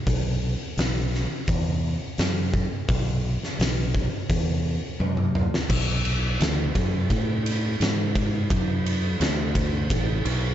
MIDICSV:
0, 0, Header, 1, 3, 480
1, 0, Start_track
1, 0, Tempo, 702576
1, 42, Time_signature, 4, 2, 24, 8
1, 7204, End_track
2, 0, Start_track
2, 0, Title_t, "Fingered electric bass"
2, 0, Program_c, 0, 33
2, 46, Note_on_c, 0, 35, 97
2, 370, Note_off_c, 0, 35, 0
2, 526, Note_on_c, 0, 35, 96
2, 851, Note_off_c, 0, 35, 0
2, 1011, Note_on_c, 0, 40, 94
2, 1335, Note_off_c, 0, 40, 0
2, 1491, Note_on_c, 0, 42, 92
2, 1815, Note_off_c, 0, 42, 0
2, 1971, Note_on_c, 0, 35, 104
2, 2295, Note_off_c, 0, 35, 0
2, 2450, Note_on_c, 0, 35, 95
2, 2775, Note_off_c, 0, 35, 0
2, 2936, Note_on_c, 0, 40, 91
2, 3258, Note_off_c, 0, 40, 0
2, 3413, Note_on_c, 0, 42, 93
2, 3737, Note_off_c, 0, 42, 0
2, 3892, Note_on_c, 0, 35, 102
2, 4343, Note_off_c, 0, 35, 0
2, 4373, Note_on_c, 0, 38, 98
2, 4597, Note_off_c, 0, 38, 0
2, 4613, Note_on_c, 0, 42, 89
2, 4837, Note_off_c, 0, 42, 0
2, 4851, Note_on_c, 0, 45, 91
2, 5302, Note_off_c, 0, 45, 0
2, 5328, Note_on_c, 0, 44, 92
2, 5779, Note_off_c, 0, 44, 0
2, 5810, Note_on_c, 0, 42, 101
2, 6260, Note_off_c, 0, 42, 0
2, 6284, Note_on_c, 0, 38, 108
2, 6736, Note_off_c, 0, 38, 0
2, 6767, Note_on_c, 0, 33, 97
2, 6991, Note_off_c, 0, 33, 0
2, 7002, Note_on_c, 0, 35, 101
2, 7204, Note_off_c, 0, 35, 0
2, 7204, End_track
3, 0, Start_track
3, 0, Title_t, "Drums"
3, 46, Note_on_c, 9, 46, 62
3, 47, Note_on_c, 9, 36, 109
3, 114, Note_off_c, 9, 46, 0
3, 115, Note_off_c, 9, 36, 0
3, 530, Note_on_c, 9, 46, 61
3, 541, Note_on_c, 9, 38, 110
3, 598, Note_off_c, 9, 46, 0
3, 609, Note_off_c, 9, 38, 0
3, 781, Note_on_c, 9, 38, 33
3, 849, Note_off_c, 9, 38, 0
3, 1007, Note_on_c, 9, 46, 58
3, 1011, Note_on_c, 9, 36, 113
3, 1075, Note_off_c, 9, 46, 0
3, 1079, Note_off_c, 9, 36, 0
3, 1488, Note_on_c, 9, 46, 53
3, 1499, Note_on_c, 9, 38, 109
3, 1557, Note_off_c, 9, 46, 0
3, 1567, Note_off_c, 9, 38, 0
3, 1732, Note_on_c, 9, 36, 82
3, 1801, Note_off_c, 9, 36, 0
3, 1970, Note_on_c, 9, 46, 57
3, 1973, Note_on_c, 9, 36, 113
3, 2038, Note_off_c, 9, 46, 0
3, 2041, Note_off_c, 9, 36, 0
3, 2346, Note_on_c, 9, 38, 35
3, 2414, Note_off_c, 9, 38, 0
3, 2457, Note_on_c, 9, 46, 59
3, 2468, Note_on_c, 9, 38, 110
3, 2525, Note_off_c, 9, 46, 0
3, 2536, Note_off_c, 9, 38, 0
3, 2695, Note_on_c, 9, 36, 79
3, 2764, Note_off_c, 9, 36, 0
3, 2935, Note_on_c, 9, 36, 114
3, 2936, Note_on_c, 9, 46, 62
3, 3004, Note_off_c, 9, 36, 0
3, 3004, Note_off_c, 9, 46, 0
3, 3417, Note_on_c, 9, 48, 61
3, 3485, Note_off_c, 9, 48, 0
3, 3533, Note_on_c, 9, 47, 59
3, 3601, Note_off_c, 9, 47, 0
3, 3657, Note_on_c, 9, 45, 90
3, 3725, Note_off_c, 9, 45, 0
3, 3787, Note_on_c, 9, 38, 93
3, 3855, Note_off_c, 9, 38, 0
3, 3892, Note_on_c, 9, 49, 127
3, 3893, Note_on_c, 9, 36, 112
3, 3961, Note_off_c, 9, 36, 0
3, 3961, Note_off_c, 9, 49, 0
3, 4133, Note_on_c, 9, 51, 80
3, 4201, Note_off_c, 9, 51, 0
3, 4376, Note_on_c, 9, 51, 93
3, 4387, Note_on_c, 9, 38, 112
3, 4444, Note_off_c, 9, 51, 0
3, 4455, Note_off_c, 9, 38, 0
3, 4614, Note_on_c, 9, 36, 87
3, 4614, Note_on_c, 9, 51, 77
3, 4682, Note_off_c, 9, 36, 0
3, 4683, Note_off_c, 9, 51, 0
3, 4852, Note_on_c, 9, 36, 89
3, 4853, Note_on_c, 9, 51, 96
3, 4921, Note_off_c, 9, 36, 0
3, 4922, Note_off_c, 9, 51, 0
3, 5098, Note_on_c, 9, 51, 73
3, 5166, Note_off_c, 9, 51, 0
3, 5335, Note_on_c, 9, 51, 94
3, 5346, Note_on_c, 9, 38, 116
3, 5403, Note_off_c, 9, 51, 0
3, 5414, Note_off_c, 9, 38, 0
3, 5571, Note_on_c, 9, 36, 90
3, 5572, Note_on_c, 9, 51, 75
3, 5640, Note_off_c, 9, 36, 0
3, 5640, Note_off_c, 9, 51, 0
3, 5810, Note_on_c, 9, 36, 117
3, 5812, Note_on_c, 9, 51, 96
3, 5878, Note_off_c, 9, 36, 0
3, 5881, Note_off_c, 9, 51, 0
3, 6055, Note_on_c, 9, 51, 80
3, 6123, Note_off_c, 9, 51, 0
3, 6290, Note_on_c, 9, 51, 104
3, 6301, Note_on_c, 9, 38, 106
3, 6359, Note_off_c, 9, 51, 0
3, 6370, Note_off_c, 9, 38, 0
3, 6526, Note_on_c, 9, 36, 93
3, 6526, Note_on_c, 9, 51, 83
3, 6595, Note_off_c, 9, 36, 0
3, 6595, Note_off_c, 9, 51, 0
3, 6766, Note_on_c, 9, 36, 94
3, 6769, Note_on_c, 9, 51, 114
3, 6834, Note_off_c, 9, 36, 0
3, 6837, Note_off_c, 9, 51, 0
3, 7006, Note_on_c, 9, 51, 86
3, 7074, Note_off_c, 9, 51, 0
3, 7204, End_track
0, 0, End_of_file